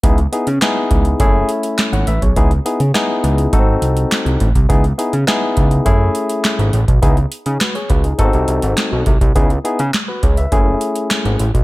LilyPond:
<<
  \new Staff \with { instrumentName = "Tine electric piano" } { \time 4/4 \key cis \minor \tempo 4 = 103 << { r2. r16 <cis'' fis''>16 <b' e''>16 <gis' cis''>16~ | <gis' cis''>16 r2. r8. | r1 | r8. <dis' gis'>16 <fis' b'>16 <gis' cis''>16 <fis' b'>16 <dis' gis'>8 r4. r16 |
r4 r16 <fis' b'>16 <gis' cis''>16 <b' e''>8 r4. r16 | } \\ { <b dis' e' gis'>16 r16 <b dis' e' gis'>16 r16 <b dis' e' gis'>4 <a cis' e' gis'>4. r8 | <b dis' e' gis'>16 r16 <b dis' e' gis'>16 r16 <b dis' e' gis'>4 <a bis dis' fis' a'>4. r8 | <b dis' e' gis'>16 r16 <b dis' e' gis'>16 r16 <b dis' e' gis'>4 <a cis' e' gis'>4. r8 | <b dis' e' gis'>16 r4. r16 <b bis dis' fis' a'>4. r8 |
<b dis' e' gis'>16 r16 <b dis' e' gis'>16 r4 r16 <a cis' e' gis'>4. r8 | } >> }
  \new Staff \with { instrumentName = "Analog synth bass" } { \clef bass \time 4/4 \key cis \minor cis,8 r16 cis16 r8 cis,8 fis,,8 r8. gis,,16 a,,16 b,,16 | cis,8 r16 cis16 r8 cis,8 gis,,8 bis,,8 r16 bis,,16 a,,16 bis,,16 | cis,8 r16 cis16 r8 cis,8 fis,,8 r8. gis,,16 a,,16 b,,16 | cis,8 r16 cis16 r8 cis,8 gis,,16 bis,,16 bis,,16 gis,,16 r16 b,,16 bis,,16 bis,,16 |
cis,8 r16 cis16 r8 cis,8 fis,,8 r8. gis,,16 a,,16 b,,16 | }
  \new DrumStaff \with { instrumentName = "Drums" } \drummode { \time 4/4 <hh bd>16 hh16 hh16 hh16 <hc hh sn>8 <hh bd>16 hh16 <hh bd>8 hh16 hh16 <hc hh sn>16 hh16 hh16 <hh bd>16 | <hh bd>16 hh16 hh16 hh16 <hc hh sn>8 hh16 hh16 <hh bd>8 hh16 hh16 <hc hh sn>16 hh16 <hh bd>16 <hh bd>16 | <hh bd>16 hh16 hh16 hh16 <hc hh sn>8 <hh bd>16 hh16 <hh bd>8 hh16 hh16 <hc hh sn>16 hh16 hh16 <hh bd>16 | <hh bd>16 hh16 hh16 hh16 <hc hh sn>16 hh16 <hh bd>16 hh16 <hh bd>16 hh16 hh16 hh16 <hc hh sn>8 <hh bd>16 <hh bd>16 |
<hh bd>16 hh16 hh16 hh16 <hc hh sn>8 <hh bd>16 hh16 <hh bd>8 hh16 hh16 <hc hh sn>16 hh16 hh16 <hh bd>16 | }
>>